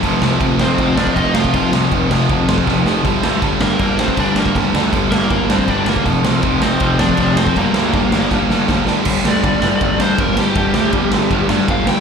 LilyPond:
<<
  \new Staff \with { instrumentName = "Lead electric guitar" } { \time 4/4 \key g \minor \tempo 4 = 160 r4. <c' c''>4 <d' d''>8 <ees' ees''>8 <f' f''>8~ | <f' f''>8 r2. r8 | r4. <bes bes'>4 <c' c''>8 <d' d''>8 <bes bes'>8 | r4. <bes bes'>4 <c' c''>8 <d' d''>8 <bes bes'>8 |
r4. <c' c''>4 <d' d''>4 <c' c''>8 | <bes bes'>2.~ <bes bes'>8 r8 | r8 d''2 c''8 bes'8 g'8~ | g'2~ g'8 r8 f''8 g''8 | }
  \new Staff \with { instrumentName = "Overdriven electric guitar" } { \clef bass \time 4/4 \key g \minor <f, c f>8 <f, c f>8 <f, c f>8 <f, c f>8 <f, c f>8 <f, c f>8 <f, c f>8 <f, c f>8 | <f, c f>8 <f, c f>8 <f, c f>8 <f, c f>8 <f, c f>8 <f, c f>8 <f, c f>8 <f, c f>8 | <g, d g>8 <g, d g>8 <g, d g>8 <g, d g>8 <g, d g>8 <g, d g>8 <g, d g>8 <g, d g>8 | <g, d g>8 <g, d g>8 <g, d g>8 <g, d g>8 <g, d g>8 <g, d g>8 <g, d g>8 <g, d g>8 |
<f, c f>8 <f, c f>8 <f, c f>8 <f, c f>8 <f, c f>8 <f, c f>8 <f, c f>8 <f, c f>8 | <g, d g>8 <g, d g>8 <g, d g>8 <g, d g>8 <g, d g>8 <g, d g>8 <g, d g>8 <g, d g>8 | <g, d g>8 <g, d g>8 <g, d g>8 <g, d g>8 <g, d g>8 <g, d g>8 <g, d g>8 <g, d g>8 | <g, d g>8 <g, d g>8 <g, d g>8 <g, d g>8 <g, d g>8 <g, d g>8 <g, d g>8 <g, d g>8 | }
  \new Staff \with { instrumentName = "Overdriven electric guitar" } { \clef bass \time 4/4 \key g \minor <f, c f>8 <f, c f>8 <f, c f>8 <f, c f>8 <f, c f>8 <f, c f>8 <f, c f>8 <f, c f>8 | <f, c f>8 <f, c f>8 <f, c f>8 <f, c f>8 <f, c f>8 <f, c f>8 <f, c f>8 <f, c f>8 | <g, d g>8 <g, d g>8 <g, d g>8 <g, d g>8 <g, d g>8 <g, d g>8 <g, d g>8 <g, d g>8 | <g, d g>8 <g, d g>8 <g, d g>8 <g, d g>8 <g, d g>8 <g, d g>8 <g, d g>8 <g, d g>8 |
<f, c f>8 <f, c f>8 <f, c f>8 <f, c f>8 <f, c f>8 <f, c f>8 <f, c f>8 <f, c f>8 | <g, d g>8 <g, d g>8 <g, d g>8 <g, d g>8 <g, d g>8 <g, d g>8 <g, d g>8 <g, d g>8 | <g, d g>8 <g, d g>8 <g, d g>8 <g, d g>8 <g, d g>8 <g, d g>8 <g, d g>8 <g, d g>8 | <g, d g>8 <g, d g>8 <g, d g>8 <g, d g>8 <g, d g>8 <g, d g>8 <g, d g>8 <g, d g>8 | }
  \new Staff \with { instrumentName = "Picked electric bass" } { \clef bass \time 4/4 \key g \minor f,,8 c,8 f,,8 f,,8 f,,8 f,8 f,,4 | f,,8 c,8 f,,8 f,,8 f,,8 f,8 f,,4 | g,,8 d,8 g,,8 g,,8 g,,8 g,8 g,,4 | g,,8 d,8 g,,8 g,,8 g,,8 g,8 g,,4 |
f,,8 c,8 f,,8 f,,8 f,,8 f,8 f,,4 | g,,8 d,8 g,,8 g,,8 g,,8 g,8 g,,4 | g,,8 d,8 g,,8 g,,8 g,,8 g,8 g,,4 | g,,8 d,8 g,,8 g,,8 g,,8 g,8 g,,4 | }
  \new DrumStaff \with { instrumentName = "Drums" } \drummode { \time 4/4 <cymc bd>8 sn8 <cymc bd>8 sn8 <cymc bd>8 sn16 bd16 <cymc bd>8 sn16 bd16 | <cymc bd>8 sn8 <cymc bd>8 sn8 <cymc bd>8 sn16 bd16 <bd sn>8 sn8 | <cymc bd>8 sn8 <cymc bd>8 sn8 <cymc bd>8 sn16 bd16 <cymc bd>8 sn16 bd16 | <cymc bd>8 sn8 <cymc bd>8 sn8 <cymc bd>8 sn16 bd16 <cymc bd>8 sn16 bd16 |
<cymc bd>8 sn8 <cymc bd>8 sn8 <cymc bd>8 sn16 bd16 <cymc bd>8 sn16 bd16 | <cymc bd>8 sn8 <cymc bd>8 sn8 <bd sn>8 sn8 <bd sn>8 sn8 | <cymc bd>8 sn8 <bd cymr>8 sn8 <bd cymr>8 sn8 <bd cymr>8 sn8 | <bd cymr>8 sn8 <bd cymr>8 sn8 <bd cymr>8 sn8 <bd cymr>8 sn8 | }
>>